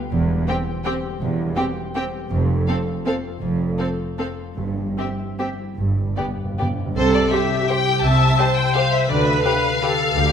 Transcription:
Already playing: D3 F3 G3 F4 B4 D5 F5 D6
0.12 E1 E2
0.30 G3
0.48 C4 G4 C5 G5
0.67 G5
0.85 C4 G4 C5 G5
1.04 G4
1.21 E1 E2
1.39 G3
1.56 C4 G4 C5 G5
1.76 G5
1.95 C4 G4 C5 G5
2.14 G4
2.31 F1 F2
2.49 A3
2.68 C4 A4 C5 F5
2.87 F5
3.05 C4 A4 C5 F5
3.24 F4
3.41 F1 F2
3.60 A3
3.79 C4 A4 C5 F5
3.99 F5
4.18 C4 A4 C5 F5
4.38 F4
4.57 G1 G2
4.78 G3
4.98 C4 G4 C5 E5
5.19 E5
5.39 C4 G4 C5 E5
5.59 E4
5.77 G1 G2
5.86 G2
5.94 G2 G3
6.03 G2
6.10 G2
6.17 G2 B3 G4 B4 D5
6.27 G2
6.36 G2 D5
6.45 G2
6.54 G2
6.59 G2 B3 G4 B4 D5
6.70 G2
6.78 G2 D4
6.86 G2
6.96 C2 C3 A4 C5
7.15 E4 D5
7.32 G3 G4 C5 E5
7.52 E4
7.69 G4 C5 G5
7.88 E4
8.02 C2 C3 E5 A5
8.22 G3
8.38 C4 G4 C5
8.57 E4 G5
8.75 G4 C5 F5
8.93 E4 E5
9.08 D2 D3 B4 D5
9.26 B4 E5
9.44 D4 G4 B4 F5
9.82 G4 A4 B4
10.00 B4
10.15 D2 D3 G4

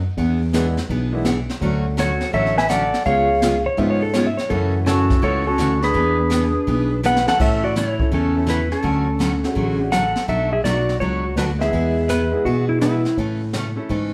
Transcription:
0.17 E2 E3 B3 D4 G#4, brush sweep, kick
0.53 E3 G#3 B3 D4 E4 G#4, snare, hi-hat pedal
0.77 snare
0.89 B1 E3 B3 D4 G#4, brush sweep, kick
1.13 E3 G#3 B3 D4 E4
1.25 E3 B3 D4 G#4, snare, hi-hat pedal
1.49 snare
1.61 D2 D3 F#3 A3 C#4 D4 F#4, brush sweep, kick
1.97 D3 F#3 A3 C#4 F#4 A4 C#5, snare, hi-hat pedal
2.21 snare
2.33 A1 D3 F#3 A3 C#4 F#4 A4 C#5 E5, brush sweep, kick
2.46 snare
2.58 B4 E5 G#5, snare
2.69 D3 F#3 A3 C#4 F#4 A4 D5 F#5, snare, hi-hat pedal
2.94 snare
3.05 C#2 C#3 G#3 B3 F4 G#4 C#5 F5, brush sweep, kick
3.42 C#3 G#3 B3 F4 G#4, snare, hi-hat pedal
3.66 C#5
3.77 G#2 C#3 F3 G#3 B3 C#4 F4 G#4 E5, brush sweep, kick
3.90 C#5
4.02 A4
4.14 C#3 G#3 B3 F4 G#4 C#5, snare, hi-hat pedal
4.27 E5
4.37 C#5, snare
4.49 F#2 C#3 E3 F#3 A3 C#4 E4 F#4 A4, brush sweep, kick
4.86 C#3 E3 A3 C#4 F#4 A4, snare, hi-hat pedal
5.10 kick, snare
5.22 C#2 C#3 E3 A3 C#4 E4 F#4 A4 C#5, brush sweep, kick
5.47 C#4 F#4 A4
5.58 D2 C#3 E3 A3 C#4 F#4, snare, hi-hat pedal
5.82 D4 G#4 B4, snare
5.94 E2 E3 B3 D4 G#4, brush sweep, kick
6.30 E3 B3 D4 G#4, snare, hi-hat pedal
6.67 B1 E3 B3 D4 G#4, brush sweep, kick
7.03 E3 B3 D4 G#4 B4 F#5, snare, hi-hat pedal
7.16 snare
7.26 E3 A3 C#4 E4 A4 F#5, snare
7.40 A2 C#3 E3 A3 C#4 A4 E5, brush sweep, kick, crash
7.64 F#4 D5
7.76 C#3 E3 A3 C#4 E4 A4 C#5, snare, hi-hat pedal
7.99 A3 C#4 E4 A4, kick
8.12 E2 C#3 E3 A3 C#4 A4, brush sweep, kick
8.35 A3 C#4 E4 A4
8.47 C#3 E3 A3 C#4 E4 A4 B4, snare, hi-hat pedal
8.72 C#4 A4, snare
8.83 D2 D3 F#3 A3 C#4 F#4, brush sweep, kick
9.19 D3 F#3 A3 C#4 F#4, snare, hi-hat pedal
9.43 D3 A3 C#4 F#4, snare
9.54 A1 D3 F#3 A3 C#4 F#4 G#4, brush sweep, kick
9.80 A3 C#4 D4 F#4
9.92 D3 F#3 A3 C#4 F#4 A4 F#5, snare, hi-hat pedal
10.16 snare
10.28 B1 B2 F#3 A3 D4 F#4 A4 E5, brush sweep, kick
10.53 G#4 E5
10.64 B1 B2 F#3 A3 D4 F#4 D5, snare, hi-hat pedal
10.89 snare
11.00 C#2 B2 F#3 A3 D4 F#4 C#5, brush sweep, kick
11.36 D2 B2 F#3 A3 D4 F#4 B4, snare, hi-hat pedal
11.59 G#3 B3 E4 G#4 E5, snare
11.73 E2 E3 B3 E4 G#4, brush sweep, kick
12.09 E3 B3 E4 G#4 B4, snare, hi-hat pedal
12.31 G#3 B3 E4 G#4
12.45 B2 E3 B3 E4 F#4 G#4, brush sweep, kick
12.69 E4
12.80 E3 G#3 B3 E4 G#4 B4, snare, hi-hat pedal
13.05 snare
13.17 A2 C#3 E3 A3 C#4 A4, brush sweep, kick
13.53 C#3 E3 A3 C#4 A4, snare, hi-hat pedal
13.76 A3 C#4 E4 A4
13.89 G#2 C#3 E3 A3 C#4 A4, brush sweep, kick

